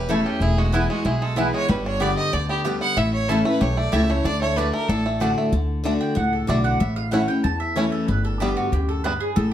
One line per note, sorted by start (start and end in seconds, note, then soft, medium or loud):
0.00 0.22 E1 medium
0.00 0.38 E2 medium
0.00 0.38 G4 medium
0.00 0.11 B4 medium
0.09 0.39 E3 medium
0.09 0.19 A3 medium
0.09 0.40 A3 medium
0.09 0.40 C#4 medium
0.09 0.19 E4 loud
0.09 0.41 E4 medium
0.09 0.40 E4 loud
0.09 0.26 A4 medium
0.09 0.19 C#5 loud
0.09 0.19 A5 loud
0.25 0.42 C#4 medium
0.25 0.42 G4 medium
0.40 0.85 E1 medium
0.40 1.02 E2 medium
0.40 0.73 E4 medium
0.40 0.60 G#4 loud
0.58 0.89 G#3 medium
0.58 0.75 F#4 medium
0.72 1.03 E3 medium
0.72 1.04 G#3 medium
0.72 0.82 B3 medium
0.72 1.04 B3 loud
0.72 0.82 E4 medium
0.72 0.89 E4 medium
0.72 1.05 E4 medium
0.72 1.04 E4 medium
0.72 0.83 B4 medium
0.72 0.83 G#5 loud
0.90 1.21 G#3 medium
0.90 1.08 F#4 medium
1.05 1.50 B1 medium
1.05 1.66 B2 medium
1.05 1.37 E4 medium
1.05 1.24 G#4 medium
1.22 1.53 G#3 medium
1.22 1.39 A4 medium
1.36 1.67 E3 medium
1.36 1.68 G#3 medium
1.36 1.46 B3 medium
1.36 1.68 B3 medium
1.36 1.46 E4 loud
1.36 1.69 E4 medium
1.36 1.68 E4 loud
1.36 1.46 B4 loud
1.36 1.54 B4 medium
1.36 1.47 G#5 loud
1.54 1.69 G#3 medium
1.54 1.70 C#5 loud
1.69 2.14 G1 loud
1.69 2.30 G2 medium
1.69 2.14 G3 medium
1.69 1.85 B4 medium
1.86 2.30 D4 medium
1.86 2.03 C#5 medium
2.00 2.31 D3 medium
2.00 2.31 G3 medium
2.00 2.10 B3 medium
2.00 2.46 B3 medium
2.00 2.32 B3 loud
2.00 2.10 G4 medium
2.00 2.32 G4 loud
2.00 2.10 D5 medium
2.00 2.16 D5 loud
2.00 2.10 G5 loud
2.17 2.62 G4 medium
2.17 2.34 D#5 loud
2.33 2.78 D2 medium
2.33 2.63 D3 medium
2.33 2.78 D4 medium
2.33 2.49 D5 medium
2.49 2.80 B3 medium
2.49 2.59 G4 loud
2.64 2.95 D3 medium
2.64 2.96 G3 medium
2.64 2.74 B3 medium
2.64 2.96 B3 medium
2.64 2.74 G4 medium
2.64 2.97 G4 medium
2.64 2.96 G4 medium
2.64 2.74 D5 medium
2.64 2.74 G5 loud
2.81 2.97 B3 medium
2.81 2.99 F#5 loud
2.97 3.41 A1 loud
2.97 3.58 A2 medium
2.97 3.28 E4 medium
2.97 3.13 E5 medium
3.13 3.30 C#5 loud
3.28 3.45 E3 medium
3.28 3.38 A3 medium
3.28 3.45 A3 medium
3.28 3.45 C#4 medium
3.28 3.38 E4 medium
3.28 3.74 E4 medium
3.28 3.44 E4 loud
3.28 3.45 A4 medium
3.28 3.38 C#5 loud
3.28 3.38 A5 loud
3.45 3.77 A3 medium
3.45 3.61 C#4 medium
3.45 3.60 E4 medium
3.45 3.63 B4 loud
3.61 3.88 B1 medium
3.61 4.22 E2 medium
3.61 3.92 G4 medium
3.61 3.79 C#5 medium
3.77 4.09 A3 medium
3.77 3.94 D5 loud
3.92 4.20 C#2 medium
3.92 4.23 E3 medium
3.92 4.02 A3 medium
3.92 4.23 A3 loud
3.92 4.24 C#4 loud
3.92 4.02 E4 loud
3.92 4.24 E4 loud
3.92 4.25 G4 medium
3.92 4.02 C#5 loud
3.92 4.11 E5 loud
3.92 4.02 A5 loud
4.10 4.42 A3 medium
4.10 4.27 C#5 loud
4.24 4.69 D2 loud
4.24 4.55 D3 medium
4.24 4.57 D4 medium
4.24 4.40 D5 loud
4.41 4.72 A3 medium
4.41 4.58 C#5 loud
4.56 4.87 D3 medium
4.56 4.66 A3 medium
4.56 4.88 A3 medium
4.56 4.88 D4 medium
4.56 4.66 F#4 medium
4.56 4.88 F#4 loud
4.56 4.72 B4 medium
4.56 4.66 D5 medium
4.56 4.66 A5 loud
4.73 5.05 A3 medium
4.73 4.90 A#4 medium
4.88 5.33 A1 medium
4.88 5.50 A2 medium
4.88 5.20 D4 medium
4.88 5.20 A4 medium
5.06 5.37 A3 medium
5.20 5.51 D3 medium
5.20 5.30 A3 loud
5.20 5.51 A3 medium
5.20 5.53 D4 medium
5.20 5.52 D4 loud
5.20 5.30 F#4 medium
5.20 5.52 F#4 loud
5.20 5.30 D5 loud
5.20 5.30 A5 loud
5.38 5.53 A3 medium
5.52 5.97 D2 medium
5.52 5.82 D3 medium
5.84 6.15 D3 medium
5.84 6.15 A3 medium
5.84 5.92 A3 medium
5.84 6.15 D4 loud
5.84 5.93 D4 medium
5.84 6.16 F#4 loud
6.01 6.16 G5 medium
6.15 6.44 C#2 medium
6.15 6.77 A2 medium
6.15 6.32 F#5 medium
6.33 6.48 A4 medium
6.47 6.76 B1 medium
6.47 6.78 D3 medium
6.47 6.79 A3 medium
6.47 6.56 A3 medium
6.47 6.79 D4 medium
6.47 6.57 D4 medium
6.47 6.80 F#4 loud
6.47 6.64 D5 medium
6.64 6.80 F#5 loud
6.80 7.25 A1 loud
6.80 7.41 A2 medium
6.80 6.96 E5 medium
6.96 7.11 F5 loud
7.11 7.28 E3 medium
7.11 7.28 A3 medium
7.11 7.20 A3 medium
7.11 7.28 C#4 medium
7.11 7.20 C#4 medium
7.11 7.27 E4 medium
7.11 7.20 E4 medium
7.11 7.28 F#5 medium
7.28 7.45 C#4 soft
7.28 7.44 E4 medium
7.28 7.43 G5 loud
7.44 8.05 E2 medium
7.44 7.89 E2 medium
7.44 7.60 A5 medium
7.60 7.76 E5 medium
7.76 8.07 E3 medium
7.76 8.07 A3 medium
7.76 7.84 A3 medium
7.76 8.07 C#4 loud
7.76 7.84 C#4 medium
7.76 8.08 E4 medium
7.76 7.84 E4 medium
7.76 7.92 C#5 medium
7.92 8.08 A4 medium
8.08 8.53 G1 medium
8.08 8.69 G2 medium
8.08 8.24 B4 medium
8.25 8.40 A4 medium
8.40 8.71 D3 medium
8.40 8.71 G3 medium
8.40 8.48 G3 medium
8.40 8.48 B3 medium
8.40 8.72 B3 loud
8.40 8.49 D4 medium
8.40 8.56 G4 medium
8.40 8.72 G4 medium
8.57 8.72 F#4 medium
8.72 9.17 D2 medium
8.72 9.03 F#2 medium
8.72 8.88 G4 medium
8.89 9.04 A4 medium
9.04 9.35 G2 medium
9.04 9.12 G3 medium
9.04 9.12 B3 medium
9.04 9.12 D4 medium
9.04 9.20 B4 loud
9.20 9.36 G#4 medium
9.36 9.53 A1 medium
9.36 9.53 A2 medium
9.36 9.52 A4 loud